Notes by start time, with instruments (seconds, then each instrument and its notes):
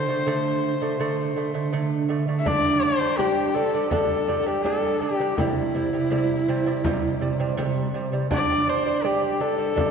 Already playing: horsehead fiddle C5
0.09 lute D3 A3
0.26 lute D3 A3
0.81 lute D3 A3
1.00 lute D3 A3
1.36 lute D3 A3
1.54 lute D3 A3
1.73 lute D3 A3
2.09 lute D3 A3
2.28 lute D3 A3
2.39 horsehead fiddle E5
2.45 lute G3 D4, horsehead fiddle D5, frame drum
2.82 lute G3 D4, horsehead fiddle C5, frame drum
3.00 lute G3 D4
3.18 lute G3 D4, horsehead fiddle G4, frame drum
3.54 lute G3 D4, horsehead fiddle A4, frame drum
3.74 lute G3 D4
3.90 lute G3 D4, horsehead fiddle A4, frame drum
4.28 lute G3 D4, frame drum
4.43 lute G3, horsehead fiddle G4 A4
4.48 lute D4
4.63 lute G3 D4, horsehead fiddle A4, frame drum
5.00 lute G3 D4, horsehead fiddle G4, frame drum
5.20 lute G3 D4
5.37 lute C3 G3, horsehead fiddle E4, frame drum
5.75 lute C3 G3, frame drum
5.93 lute C3 G3
6.10 lute C3 G3, frame drum
6.48 lute C3 G3, frame drum
6.66 lute C3 G3
6.84 lute C3 G3, frame drum
7.21 lute C3 G3
7.40 lute C3 G3
7.57 lute C3 G3, frame drum
7.94 lute C3 G3, frame drum
8.12 lute C3 G3
8.31 lute G3 D4, horsehead fiddle D5, frame drum
8.67 lute G3 D4, horsehead fiddle C5, frame drum
8.86 lute G3 D4
9.04 lute G3 D4, horsehead fiddle G4, frame drum
9.40 lute G3 D4, horsehead fiddle A4, frame drum
9.58 lute G3 D4
9.76 lute G3 D4, frame drum